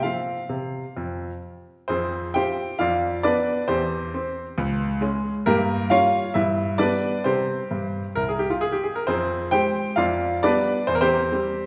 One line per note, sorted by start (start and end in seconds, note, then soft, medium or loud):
0.03 0.36 F3 soft
0.03 0.41 C4 soft
0.03 0.41 F4 soft
0.03 1.38 F5 medium
0.49 0.82 C3 soft
0.97 1.29 F2 soft
1.88 2.34 F2 soft
1.88 2.32 C4 medium
1.88 2.32 G#4 medium
1.88 2.30 C5 medium
2.34 2.68 C4 soft
2.34 2.68 F4 soft
2.34 2.77 G4 medium
2.34 2.77 C5 medium
2.34 2.75 G5 medium
2.79 3.23 F2 medium
2.79 3.21 F4 medium
2.79 3.21 D5 soft
2.79 3.24 F5 medium
3.23 3.57 B3 soft
3.23 3.66 D4 medium
3.23 3.66 B4 medium
3.23 3.64 D5 medium
3.68 4.12 E2 medium
3.68 4.13 C4 soft
3.68 5.20 G4 medium
3.68 5.24 C5 medium
4.14 4.46 C4 medium
4.58 5.01 C#2 medium
5.01 5.33 G#3 medium
5.01 5.34 C#4 medium
5.46 5.89 G2 medium
5.46 5.88 A#3 medium
5.46 5.88 G4 medium
5.46 5.90 A#4 medium
5.90 6.23 G3 soft
5.90 6.23 C#4 medium
5.90 6.32 F4 medium
5.90 6.32 C#5 medium
5.90 6.35 F5 medium
6.34 6.78 G2 medium
6.34 6.76 E4 medium
6.34 6.79 E5 medium
6.78 7.12 G3 soft
6.78 7.12 B3 soft
6.78 7.21 D4 medium
6.78 7.22 B4 medium
6.78 7.24 D5 medium
7.24 7.57 C3 soft
7.24 7.62 G3 soft
7.24 8.12 C4 medium
7.24 8.12 G4 medium
7.24 8.12 C5 medium
7.71 8.03 G2 soft
8.15 8.48 C2 soft
8.15 8.27 A#4 medium
8.29 8.39 G#4 medium
8.39 8.50 G4 medium
8.50 8.62 F4 medium
8.61 8.73 G#4 medium
8.72 8.84 G4 medium
8.83 8.95 G#4 medium
8.95 9.07 A#4 medium
9.07 9.52 F2 medium
9.07 9.50 C4 medium
9.07 9.50 G#4 medium
9.07 9.50 C5 medium
9.51 9.85 G#3 soft
9.51 9.85 C4 soft
9.51 9.94 G4 medium
9.51 9.94 C5 medium
9.51 9.93 G5 medium
9.96 10.41 F2 medium
9.96 10.39 F4 medium
9.96 10.40 D5 medium
9.96 10.38 F5 medium
10.43 10.75 G3 soft
10.43 10.76 B3 medium
10.43 10.85 D4 medium
10.43 10.85 B4 medium
10.43 10.87 D5 medium
10.87 11.31 E2 medium
10.87 10.94 C5 medium
10.95 11.02 A#4 medium
11.01 11.31 C4 medium
11.01 11.66 G4 medium
11.01 11.66 C5 medium
11.32 11.64 G3 soft
11.32 11.64 C4 soft